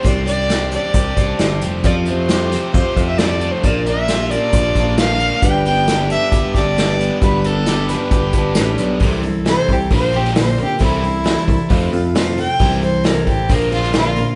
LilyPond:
<<
  \new Staff \with { instrumentName = "Fiddle" } { \time 4/4 \key c \mixolydian \tempo 4 = 134 d''8 d''4 d''2 r8 | d''8 c''4. c''8. e''16 d''8. c''16 | d''8 e''4 d''4. f''4 | g''8 g''4 e''4 d''4. |
b'8 a'4 b'2 r8 | r4 c''8 g'8 c''8 g'8 c''8 g'8 | e'2. r8 g''8~ | g''8 c''8 bes'8 g'8 bes'8 f'8 f'4 | }
  \new Staff \with { instrumentName = "Upright piano" } { \time 4/4 \key c \mixolydian r1 | <f' g' a'>4 <f' g' a'>4 <f' g' c''>4 <f' g' a'>4 | <d' f' bes'>4 <d' f' g'>4 <d' f' g'>4 <d' f' bes'>4 | <d' g' b'>4 <g' a'>4 <d' g' b'>4 <d' g' b'>4 |
<d' g' d''>4 <d' g' d''>4 <d' g' b'>4 <d' g' d''>4 | <e' a' c''>4 <e' a' c''>4 <d' bes' c''>4 <d' bes' c''>4 | <e' a' c''>4 <e' a' d''>4 <c' a' c''>4 <f' a' c''>4 | <e' a' c''>4 <e' a' c''>4 <d' bes' c''>4 <d' bes' c''>4 | }
  \new Staff \with { instrumentName = "Steel-string acoustic guitar" } { \time 4/4 \key c \mixolydian <c' d' g' c''>8 <d' g' c''>8 <c' d' g' c''>8 <d' g' c''>4 <d' g' c''>8 <c' d' g' c''>4 | <f g c' g' a'>8 <c' g' a'>8 <g c' g' a'>8 <c' g' a'>4 <c' g' a'>8 <g c' g' a'>4 | <bes, f bes d' f' bes'>8 <bes d' f' bes'>8 <bes d' f' bes'>8 <bes d' f' bes'>4 <bes d' f' bes'>8 <bes d' f' bes'>4 | <g d' g' b'>8 <d' g' b'>8 <g d' g' b'>8 <d' g' b'>4 <d' g' b'>8 <g d' g' b'>4 |
<g d' g' b'>8 <d' g' b'>8 <g d' g' b'>8 <d' g' b'>4 <d' g' b'>8 <g d' g' b'>4 | <c e g c' e' a'>8 <g c' e' a'>8 <c e g c' e' a'>4 <bes c' f' bes'>8 <bes c' f' bes'>8 <bes, d bes c' f' bes'>8 <bes c' f' bes'>8 | <c e g c' e' a'>8 <g c' e' a'>8 <c e g c' e' a'>4 <a c' f' a'>8 <c' f' a'>8 <f a c' f' a'>8 <c' f' a'>8 | <c e g c' e' a'>8 <g c' e' a'>8 <c e g c' e' a'>4 <bes c' f' bes'>8 <bes c' f' bes'>8 <bes, d bes c' f' bes'>8 <bes c' f' bes'>8 | }
  \new Staff \with { instrumentName = "Overdriven electric guitar" } { \clef bass \time 4/4 \key c \mixolydian <c g c' d' g'>8 c'8 g'8 d'8 g'8 d'8 g8 c'8 | f8 a8 g'8 c'8 g'8 c'8 f8 a8 | bes,8 bes8 f'8 d'8 f'8 d'8 d8 bes8 | g,8 b8 g'8 d'8 g'8 d'8 g8 b8 |
g,8 b8 g'8 d'8 g'8 d'8 g8 b8 | <c e g>8 <c e>8 <c e>8 <c e>8 <bes, d bes>8 <bes, d bes>8 <bes, d>8 <bes, d>8 | <c e g>8 <c e>8 <c e>8 <c e>8 <f, c f>8 <f, c>8 <f, c>8 <f, c>8 | <c e g>8 <c e>8 <c e>8 <c e>8 <bes, d bes>8 <bes, d bes>8 <bes, d>8 <bes, d>8 | }
  \new Staff \with { instrumentName = "Picked electric bass" } { \clef bass \time 4/4 \key c \mixolydian c,2 c,8 c,8 g,,8 f,,8 | f,2 f,16 r16 f,4. | bes,,2 bes,,8 bes,,4. | g,,2 g,,16 r16 g,,4. |
g,,2 g,,8 g,,8 a,,8 b,,8 | c,4. c,8 bes,,2 | c,4. c,16 r16 f,8 f,4. | c,4. a,,8 bes,,2 | }
  \new DrumStaff \with { instrumentName = "Drums" } \drummode { \time 4/4 <hh bd>8 hh8 <hh sn>8 hh8 <hh bd>8 <hh bd>8 <hh sn>8 hh8 | <hh bd>8 hh8 <hh sn>8 <hh sn>8 <hh bd>8 <hh bd>8 <hh sn>8 hh8 | <hh bd>8 hh8 <hh sn>8 hh8 <hh bd>8 <hh bd>8 <hh sn>8 hh8 | <hh bd>8 hh8 <hh sn>8 hh8 <hh bd>8 <hh bd sn>8 <hh sn>8 hh8 |
<hh bd>8 hh8 <hh sn>8 <hh sn>8 <hh bd>8 <hh bd>8 <hh sn>8 hh8 | <hho bd>8 hho8 <hho sn>8 <hho bd>8 <hho bd>8 hho16 sn16 <hho sn>8 hho8 | <hho bd>8 hho8 <hho sn>16 sn16 <hho bd>8 <hho bd>8 hho8 <hho sn>8 hho8 | <hho bd>8 hho8 <hho sn>8 <hho bd>8 <hho bd>8 hho16 sn16 <hho sn>8 hho8 | }
>>